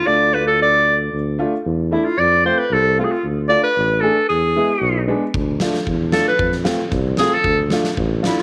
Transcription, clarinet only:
X:1
M:2/4
L:1/16
Q:1/4=114
K:none
V:1 name="Clarinet"
d2 B A d3 z | z6 E F | d2 c B A2 F/2 ^G/2 F | z2 d B3 A2 |
^G6 z2 | z6 A B- | B z4 z ^G A- | A z4 z E F |]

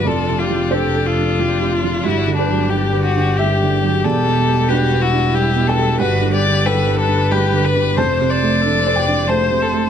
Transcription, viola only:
X:1
M:3/4
L:1/8
Q:1/4=91
K:G
V:1 name="Viola"
=F G A A G F | F G4- G | G2 F E3 | F G A B3 |
c c A d c2 |]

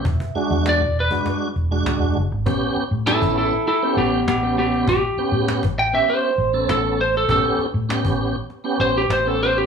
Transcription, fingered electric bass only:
X:1
M:4/4
L:1/16
Q:1/4=99
K:Amix
V:1 name="Fingered electric bass" clef=bass
E,,, z2 E,,2 E,,,2 z3 E,,,2 D,,, E,,, F,,, ^G,,, | A,,, z2 A,,2 A,,,2 z3 A,,,2 A,,,4 | A,,, z2 A,,2 A,,,2 z3 A,,,2 A,,,4 | A,,, z2 A,,2 A,,,2 z3 A,,,2 A,,,4 |]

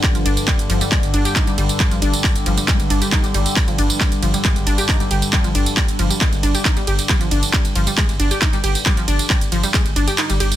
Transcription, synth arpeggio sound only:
X:1
M:4/4
L:1/16
Q:1/4=136
K:Cm
V:1 name="Synth arpeggio sound" clef=bass
G, F, D z G, z F, G, A, z D G E G, G, z | G, F, D z G, z F, G, A, z D G E G, G, z | G, F, D z G, z F, G, A, z D G E G, G z | G, F, D z G, z F, G, A, z D G E G, G z |
G, F, D z G, z F, G, A, z D G E G, G z | G, F, D z G, z F, G, A, z D G E G, G z |]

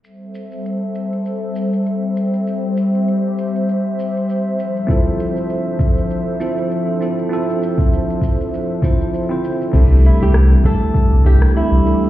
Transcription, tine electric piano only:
X:1
M:4/4
L:1/16
Q:"Swing 16ths" 1/4=99
K:C
V:1 name="Tine electric piano"
z16 | z16 | [CEFA]8- [CEFA]2 [CEFA]4 [CEFA]2 | [CEFA]8- [CEFA]2 [CEFc]3 [CEFc]3 |
[DEGA]8- [DEGA]2 [DEGA]4 [DEGA]2 |]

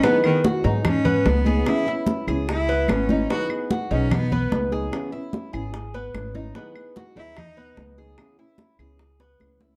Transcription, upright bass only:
X:1
M:4/4
L:1/8
Q:1/4=147
K:G#m
V:1 name="Upright bass" clef=bass
z3 G,,3 C,,2 | z3 C,,3 G,,,2 | z3 B,,,3 C,,2 | z3 G,,,3 G,,,2 |
z3 D,,3 C,,2 | z3 C,,3 C,,2 |]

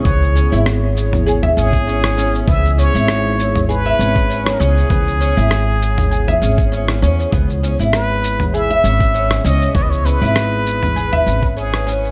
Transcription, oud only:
X:1
M:4/4
L:1/16
Q:"Swing 16ths" 1/4=99
K:C#m
V:1 name="Oud"
B, z C E z4 G e C2 C2 C2 | B, z C E z4 G e C2 C2 C2 | B, z C E z4 G e C2 C2 C2 | B, z C E z4 G e C2 C2 C2 |
B, z C E z4 G e C2 C2 C2 |]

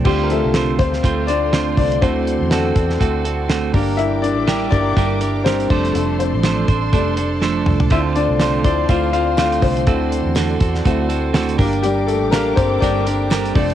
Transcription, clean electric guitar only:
X:1
M:4/4
L:1/8
Q:"Swing 16ths" 1/4=122
K:Dm
V:1 name="Clean electric guitar"
[D,A,CFc]2 [D,A,CFc] [CFc] [A,CFc] [CFc] [D,A,CFc]2 | [D,A,C^FA]2 [D,A,CFA] [CFA] [A,CFA] [CFA] [D,A,CFA] [G,DGB]- | [G,DGB]2 [G,DGB] [DGB] [G,DGB] [DGB] [G,DGB] [F,A,DAc]- | [F,A,DAc]2 [F,A,DAc] [DAc] [A,DAc] [DAc] [F,A,DAc]2 |
[D,A,CFc]2 [D,A,CFc] [CFc] [A,CFc] [CFc] [D,A,CFc]2 | [D,A,C^FA]2 [D,A,CFA] [CFA] [A,CFA] [CFA] [D,A,CFA] [G,DGB]- | [G,DGB]2 [G,DGB] [DGB] [G,DGB] [DGB] [G,DGB] [F,A,CAd] |]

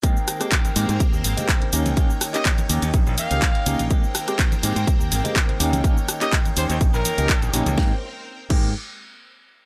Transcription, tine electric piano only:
X:1
M:4/4
L:1/16
Q:"Swing 16ths" 1/4=124
K:Ab
V:1 name="Tine electric piano"
[A,B,CG] z2 [A,B,CG] z2 [A,B,CG] z [A,B,CG] z2 [A,B,CG] z2 [B,DEG]2 | [EG] z2 [B,DEG] z2 [B,DEG] z [B,DEG] z2 [B,DEG] z2 [B,DEG]2 | [A,B,CG] z2 [A,B,CG] z2 [A,B,CG] z [A,B,CG] z2 [A,B,CG] z2 [B,DEG]2 | [B,DEG] z2 [B,DEG] z2 [B,DEG] z [B,DEG] z2 [B,DEG] z2 [B,DEG]2 |
[A,B,CG] z4 z [A,B,CG]2 z8 |]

